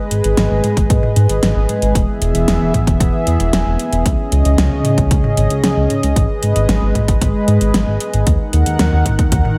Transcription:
Already playing: G#3 G#4 B4 D#5
0.11 G#1, closed hi-hat
0.24 G#1, closed hi-hat
0.37 G#1, snare, closed hi-hat
0.51 G#1
0.64 closed hi-hat, mid tom
0.77 G#1, kick, closed hi-hat
0.90 G#1, kick, closed hi-hat
1.03 mid tom
1.16 G#2, closed hi-hat
1.29 G#1, closed hi-hat
1.43 G#1, snare, closed hi-hat
1.56 G#1
1.69 closed hi-hat, mid tom
1.82 G#1, closed hi-hat
1.95 E1 E3 B3 E5, kick, closed hi-hat
2.22 E1, closed hi-hat
2.35 E1, closed hi-hat
2.48 E1, snare, closed hi-hat
2.61 E1
2.74 kick, closed hi-hat, mid tom
2.87 E1, kick, closed hi-hat
3.00 E1, kick, closed hi-hat
3.27 E2, closed hi-hat
3.40 E1, closed hi-hat
3.53 E1, snare, closed hi-hat
3.66 E1
3.79 closed hi-hat
3.93 E1, closed hi-hat
4.06 C#2 C#3 C#4 D#5, kick, closed hi-hat
4.32 C#2, closed hi-hat
4.45 C#2, closed hi-hat
4.58 C#2, snare, closed hi-hat
4.72 C#2
4.85 closed hi-hat, mid tom
4.98 C#2, kick, closed hi-hat
5.11 C#2, kick, closed hi-hat
5.24 mid tom
5.37 G#1, closed hi-hat
5.50 C#2, closed hi-hat
5.64 C#2, snare, closed hi-hat
5.77 C#2
5.90 closed hi-hat, mid tom
6.03 C#2, closed hi-hat
6.16 G#1 G#3 B4, kick, closed hi-hat
6.43 G#1, closed hi-hat
6.56 G#1, closed hi-hat
6.69 G#1, snare, closed hi-hat
6.82 G#1
6.95 kick, closed hi-hat, mid tom
7.08 G#1, kick, closed hi-hat
7.21 G#1, kick, closed hi-hat
7.48 G#2, closed hi-hat
7.61 G#1, closed hi-hat
7.74 G#1, snare, closed hi-hat
7.88 G#1
8.00 closed hi-hat
8.14 G#1, closed hi-hat
8.27 D#2 D#3 D#4 A#4 F#5, kick, closed hi-hat
8.53 D#2, closed hi-hat
8.66 D#2, closed hi-hat
8.79 D#2, snare, closed hi-hat
8.93 D#2
9.06 kick, closed hi-hat, mid tom
9.19 D#2, kick, closed hi-hat
9.32 D#2, kick, closed hi-hat
9.45 mid tom

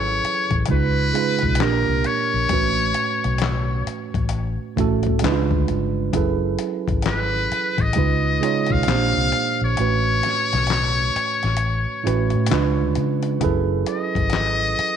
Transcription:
Already playing: G#1 F#3 C#4 E4 G#4 A4 B4 C#5
0.24 muted fingered electric bass stroke, closed hi-hat
0.51 A1, kick, closed hi-hat
0.66 C#2 C#3 G#3, kick, closed hi-hat
0.70 D#4 F4 B4
1.14 C#3 G#3 D#4 F4 B4, closed hi-hat
1.39 closed hi-hat
1.43 B1, kick
1.55 A#2, closed hi-hat
1.59 A#1 A#3 D4 G4 A#4, snare, clap
1.88 C2
2.04 C#5, closed hi-hat
2.34 A#1
2.49 A1 A2 A3 C#4 F#4 B4, kick, closed hi-hat
2.94 closed hi-hat
3.24 B1, closed hi-hat
3.38 snare, closed hi-hat
3.43 clap
3.87 muted fingered electric bass stroke, closed hi-hat
4.14 A1, kick, closed hi-hat
4.29 closed hi-hat
4.77 A1 A2 A3 C#4 F#4 A4, kick, closed hi-hat
5.03 kick, closed hi-hat
5.07 A2
5.19 C#3 G#3, closed hi-hat
5.23 C#2 D4 E4 B4, snare, clap
5.31 F4
5.51 D2, kick
5.68 G1, closed hi-hat
6.13 F#1 F#3 C#4 E4 G#4 A4, kick, closed hi-hat
6.17 B4
6.59 closed hi-hat
6.88 G#1, kick, closed hi-hat
7.02 snare, closed hi-hat
7.07 B4, clap
7.51 muted fingered electric bass stroke, closed hi-hat
7.78 A1 D#5, kick, closed hi-hat
7.93 C#2 C#3 G#3 D#4, kick, closed hi-hat
7.98 F4 B4
8.41 C#3 G#3 D#4 F4 C#5, closed hi-hat
8.66 kick, closed hi-hat
8.71 B1 F5
8.83 A#2, closed hi-hat
8.87 A#1 A#3 C4 G4 C5, snare, clap
8.95 D4
9.16 C2
9.32 closed hi-hat
9.61 A#1 C#5
9.77 A1 A2 A3 C#4 F#4, closed hi-hat
9.81 B4
10.23 snare, closed hi-hat
10.53 B1, snare, closed hi-hat
10.67 snare, closed hi-hat
10.71 clap
11.16 muted fingered electric bass stroke, closed hi-hat
11.43 A1, snare, closed hi-hat
11.57 closed hi-hat
12.04 A1 A2 A3 C#4 F#4 B4, closed hi-hat
12.30 closed hi-hat
12.34 A2
12.46 C#3 G#3, closed hi-hat
12.51 C#2 D4 F4 B4, snare, clap
12.80 D2
12.95 C#3, closed hi-hat
13.23 closed hi-hat
13.40 F#1 F#3 C#4 E4 G#4 A4 B4, kick, closed hi-hat
13.86 D#5, closed hi-hat
14.15 G#1, kick, closed hi-hat
14.30 snare, closed hi-hat
14.34 clap
14.79 muted fingered electric bass stroke, closed hi-hat

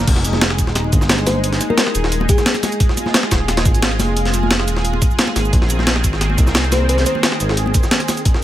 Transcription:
0.07 F1 G#3 D#4 G#4, kick, closed hi-hat, crash
0.16 snare
0.24 closed hi-hat, muted conga, shaker
0.33 snare, high conga
0.41 snare, closed hi-hat
0.50 snare
0.58 D#1, kick, closed hi-hat, shaker
0.67 snare
0.75 snare, closed hi-hat
0.84 high conga
0.92 G1, kick, closed hi-hat, shaker
1.01 snare, shaker
1.09 snare, closed hi-hat
1.18 snare, closed hi-hat
1.27 C5, snare, closed hi-hat, open hi-hat, high conga, shaker
1.44 closed hi-hat
1.53 snare, closed hi-hat
1.61 closed hi-hat, muted conga, shaker
1.70 A#4, high conga
1.78 snare, closed hi-hat
1.87 snare
1.95 D#1, closed hi-hat, shaker
2.04 snare
2.12 closed hi-hat
2.20 muted conga, high conga
2.29 G#4, kick, closed hi-hat, shaker
2.38 snare, shaker
2.46 snare, closed hi-hat
2.54 snare, closed hi-hat, muted conga
2.63 snare, open hi-hat, muted conga, high conga, shaker
2.72 closed hi-hat, shaker
2.80 F4, kick, closed hi-hat
2.89 snare
2.97 closed hi-hat, muted conga, shaker
3.06 snare, high conga
3.14 snare, closed hi-hat
3.23 snare
3.31 D#1, kick, snare, closed hi-hat, shaker
3.48 snare, closed hi-hat
3.57 snare, closed hi-hat, high conga
3.65 G#1, kick, closed hi-hat, shaker
3.74 closed hi-hat, shaker
3.82 snare, closed hi-hat
3.91 snare, closed hi-hat
3.99 F1, snare, closed hi-hat, open hi-hat, high conga, shaker
4.17 closed hi-hat
4.25 snare, closed hi-hat
4.33 closed hi-hat, muted conga, shaker
4.43 high conga
4.51 snare, closed hi-hat
4.60 snare
4.68 D#1, closed hi-hat, shaker
4.77 snare
4.85 closed hi-hat
4.93 muted conga, high conga
5.02 kick, closed hi-hat, shaker
5.11 shaker
5.19 snare, closed hi-hat
5.27 snare, muted conga
5.36 G#1, snare, closed hi-hat, open hi-hat, muted conga, high conga, shaker
5.45 shaker
5.53 A#1 D#3 C4, kick, closed hi-hat
5.62 snare
5.69 closed hi-hat, muted conga, shaker
5.79 snare, high conga
5.87 snare, closed hi-hat
5.96 snare
6.04 G#1, kick, closed hi-hat, shaker
6.13 snare
6.21 snare, closed hi-hat
6.30 high conga
6.38 C2, kick, closed hi-hat, shaker
6.47 snare, shaker
6.55 snare, closed hi-hat
6.64 snare, closed hi-hat
6.72 C5, snare, closed hi-hat, open hi-hat, high conga, shaker
6.89 C5, closed hi-hat
6.98 snare, closed hi-hat
7.06 C5, closed hi-hat, muted conga, shaker
7.15 high conga
7.23 snare, closed hi-hat
7.32 snare
7.40 G#1, closed hi-hat, shaker
7.49 snare
7.57 closed hi-hat
7.66 muted conga, high conga
7.74 kick, closed hi-hat, shaker
7.83 snare, shaker
7.91 snare, closed hi-hat
8.00 snare, closed hi-hat, muted conga
8.08 snare, open hi-hat, muted conga, high conga, shaker
8.17 closed hi-hat, shaker
8.25 F3 D4 A#4, kick, closed hi-hat
8.34 snare

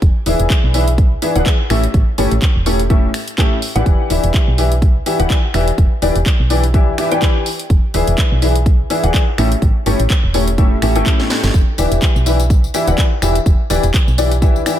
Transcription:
0.02 E1, kick, closed hi-hat
0.26 D1 E3 D4 E4 G#4 B4 E5, open hi-hat
0.40 E1, closed hi-hat
0.50 kick, clap, closed hi-hat
0.64 B1
0.74 E3 D4 E4 G#4 B4 E5, open hi-hat
0.88 closed hi-hat
0.98 kick, closed hi-hat
1.22 E3 D4 E4 G#4 B4 E5, open hi-hat
1.36 D1 E3 D4 E4 G#4 B4 F#5, closed hi-hat
1.46 kick, clap, closed hi-hat
1.70 A1 A2 C#4 E4 G4 A4 E5, finger snap, open hi-hat
1.84 closed hi-hat
1.94 A1, kick, closed hi-hat
2.18 G1 A2 C#4 E4 G4 A4 C#5, open hi-hat
2.31 A1, closed hi-hat
2.42 kick, clap, closed hi-hat
2.56 E1
2.66 A2 C#4 E4 G4 A4 C#5, open hi-hat
2.80 closed hi-hat
2.90 A2 C#4 E4 G4 A4 E5, kick, closed hi-hat
3.14 finger snap, open hi-hat
3.28 closed hi-hat
3.38 A2 C#4 E4 G4 A4 E5, kick, clap, closed hi-hat
3.62 open hi-hat
3.76 A1 E3 D4 E4 G4 B4 F#5, closed hi-hat
3.86 E1, kick, closed hi-hat
4.10 D1 E3 D4 E4 G4 B4 E5, open hi-hat
4.24 E1, closed hi-hat
4.34 kick, clap, closed hi-hat
4.48 B1
4.58 E3 D4 E4 G4 B4 E5, open hi-hat
4.72 closed hi-hat
4.82 kick, closed hi-hat
5.06 E3 D4 E4 G4 B4 E5, open hi-hat
5.20 D1 E3 D4 E4 G4 B4 F#5, closed hi-hat
5.30 kick, clap, closed hi-hat
5.54 E1 E3 D4 E4 G4 B4 E5, finger snap, open hi-hat
5.68 closed hi-hat
5.78 E1, kick, closed hi-hat
6.02 D1 E3 D4 E4 G4 B4 D5, open hi-hat
6.16 E1, closed hi-hat
6.26 kick, clap, closed hi-hat
6.40 B1
6.50 E3 D4 E4 G4 B4 D5, open hi-hat
6.64 closed hi-hat
6.74 E3 D4 E4 G4 B4 E5, kick, closed hi-hat
6.98 E3 D4 E4 G4 B4 E5, finger snap, open hi-hat
7.12 E3 D4 E4 G4 B4 G5, closed hi-hat
7.22 kick, clap, closed hi-hat
7.46 open hi-hat
7.60 closed hi-hat
7.70 E1, kick, closed hi-hat
7.94 D1 E3 D4 E4 G#4 B4 E5, open hi-hat
8.07 E1, closed hi-hat
8.18 kick, clap, closed hi-hat
8.32 B1
8.42 E3 D4 E4 G#4 B4 E5, open hi-hat
8.56 closed hi-hat
8.66 kick, closed hi-hat
8.90 E3 D4 E4 G#4 B4 E5, open hi-hat
9.04 D1 E3 D4 E4 G#4 B4 F#5, closed hi-hat
9.14 kick, clap, closed hi-hat
9.38 A1 A2 C#4 E4 G4 A4 E5, finger snap, open hi-hat
9.52 closed hi-hat
9.62 A1, kick, closed hi-hat
9.86 G1 A2 C#4 E4 G4 A4 C#5, open hi-hat
10.00 A1, closed hi-hat
10.10 kick, clap, closed hi-hat
10.24 E1
10.34 A2 C#4 E4 G4 A4 C#5, open hi-hat
10.48 closed hi-hat
10.58 A2 C#4 E4 G4 A4 E5, kick, closed hi-hat
10.82 A1 A2 C#4 E4 G4 A4 E5, finger snap, open hi-hat
10.96 G1 A2 C#4 E4 G4 A4 G5, closed hi-hat
11.06 kick, clap, closed hi-hat
11.20 snare
11.30 snare, open hi-hat
11.44 G1, snare, closed hi-hat
11.54 E1, kick, closed hi-hat, tambourine
11.78 D1 E3 D4 E4 G4 B4 E5, open hi-hat, tambourine
11.92 E1, closed hi-hat, tambourine
12.02 kick, clap, closed hi-hat, tambourine
12.16 B1, tambourine
12.26 E3 D4 E4 G4 B4 E5, open hi-hat, tambourine
12.40 closed hi-hat, tambourine
12.50 kick, closed hi-hat, tambourine
12.64 tambourine
12.74 E3 D4 E4 G4 B4 E5, open hi-hat, tambourine
12.88 D1 E3 D4 E4 G4 B4 F#5, closed hi-hat, tambourine
12.98 kick, clap, closed hi-hat, tambourine
13.22 E1 E3 D4 E4 G4 B4 E5, finger snap, open hi-hat, tambourine
13.35 closed hi-hat, tambourine
13.46 E1, kick, closed hi-hat, tambourine
13.70 D1 E3 D4 E4 G4 B4 D5, open hi-hat, tambourine
13.83 E1, closed hi-hat, tambourine
13.94 kick, clap, closed hi-hat, tambourine
14.07 B1, tambourine
14.18 E3 D4 E4 G4 B4 D5, open hi-hat, tambourine
14.32 closed hi-hat, tambourine
14.42 E3 D4 E4 G4 B4 E5, kick, closed hi-hat, tambourine
14.56 tambourine
14.66 E3 D4 E4 G4 B4 E5, finger snap, open hi-hat, tambourine

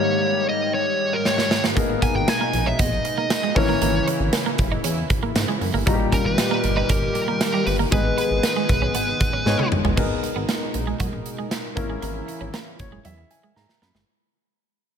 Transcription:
Already playing: G#2 D#3 G3 A#3 D#4 G4 A#4 C#5
0.49 D#5
0.74 C#5
1.13 A#4
1.25 C#5, snare
1.38 snare
1.51 snare
1.64 snare
1.75 G#1 B2 G#3 A#3 B3 D#4 G#4 A#4, kick, closed hi-hat
1.90 muted clean electric guitar stroke
2.02 B3 G#5, kick, closed hi-hat
2.15 G#1 G5
2.28 G#5, snare, closed hi-hat, tambourine
2.41 A#3
2.53 A#1, muted clean electric guitar stroke, closed hi-hat
2.66 C#4 E5
2.79 A#1 B3 D#5, kick, closed hi-hat
3.05 muted clean electric guitar stroke, closed hi-hat
3.18 A#3
3.30 snare, closed hi-hat, tambourine
3.43 G#3
3.55 G#1 C#3 E3 A#3 C#4 E4 A#4 C#5, muted clean electric guitar stroke, kick, open hi-hat
3.69 A#3
3.82 G#1 A#3, closed hi-hat
3.95 muted clean electric guitar stroke
4.08 C#4, closed hi-hat
4.20 G#1
4.33 snare, closed hi-hat, tambourine
4.46 A#3
4.58 F#1, muted clean electric guitar stroke, kick, closed hi-hat
4.72 D#4
4.84 E2 C#4, closed hi-hat
5.10 muted clean electric guitar stroke, kick, closed hi-hat
5.23 A#3
5.35 G#2, snare, closed hi-hat, tambourine
5.48 G#3
5.61 F#2, muted clean electric guitar stroke, open hi-hat
5.74 G1 A#3
5.86 G#1 A#2 D#3 G3 D#4 F#4 G4 A#5, kick, closed hi-hat
5.94 G4
6.00 muted clean electric guitar stroke
6.12 C#4 A#4, kick, closed hi-hat
6.25 G#1 B4
6.38 snare, closed hi-hat, tambourine
6.51 A#3
6.64 G1, muted clean electric guitar stroke, closed hi-hat
6.77 D#4 B4
6.89 G1 C#4 A#4, kick, closed hi-hat
7.15 muted clean electric guitar stroke, closed hi-hat
7.28 A#3
7.41 snare, closed hi-hat, tambourine
7.54 G3
7.66 G1 B4, muted clean electric guitar stroke, open hi-hat
7.79 A#3
7.91 G#1 G#3 B3 D#4 G#4 B4, kick, closed hi-hat
8.05 muted clean electric guitar stroke
8.18 B3, closed hi-hat
8.31 G#1
8.43 snare, closed hi-hat, tambourine
8.56 G#3
8.69 B1, muted clean electric guitar stroke, kick, closed hi-hat
8.82 C#4
8.95 G#1 B3, closed hi-hat
9.21 muted clean electric guitar stroke, kick, closed hi-hat
9.33 C#4
9.46 G#2 G#3 B3 D#4 G#4 C#5, snare
9.59 B3, high tom
9.72 G#1, muted clean electric guitar stroke, mid tom
9.85 G1 G#3, floor tom
9.96 G#1 B2 G#3 B3 D#4 G#4 A#4, kick, crash
10.23 muted clean electric guitar stroke, closed hi-hat
10.36 G#1 B3
10.49 A#3, snare, closed hi-hat
10.74 A#1, muted clean electric guitar stroke, closed hi-hat
10.87 G#3
11.00 A#1 F#3, kick, closed hi-hat
11.13 muted clean electric guitar stroke
11.26 closed hi-hat
11.39 G#3
11.51 muted clean electric guitar stroke, snare, closed hi-hat
11.75 G#1 C#3 E3 A#3 C#4 E4 A#4, kick, closed hi-hat
11.90 G#3
12.02 G#1 A#3, closed hi-hat
12.28 muted clean electric guitar stroke, closed hi-hat
12.41 G#1 C#4
12.54 A#3, snare, closed hi-hat
12.79 F#1 C#5, muted clean electric guitar stroke, kick, closed hi-hat
12.92 G#3
13.05 E2 F#3 E5, closed hi-hat
13.18 muted clean electric guitar stroke
13.30 G#5, closed hi-hat
13.44 G#3
13.56 G#2 A#5, muted clean electric guitar stroke, snare
13.69 snare
13.82 F#2 A#3 B5, snare
13.95 G1 G#3, snare

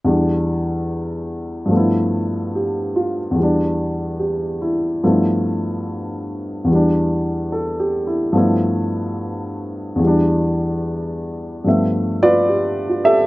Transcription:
0.04 E2 E3 G3 D4
1.65 G2 F3
1.71 A3 B3
1.77 E4
2.55 G4
2.96 F4
3.31 E2
3.35 E3 G3
3.43 D4
4.19 G4
4.62 E4
5.03 G2 F3 A3 B3 E4
6.64 E2 E3
6.72 G3 D4
7.52 A4
7.79 G4
8.07 E4
8.32 G2 F3 A3 B3
8.37 E4
9.96 E2 E3
10.03 G3 D4
11.64 G2 F3 A3 B3
11.68 E5
12.23 F4 B4 D5
12.49 G4
12.89 F4
13.04 G4 A4 E5

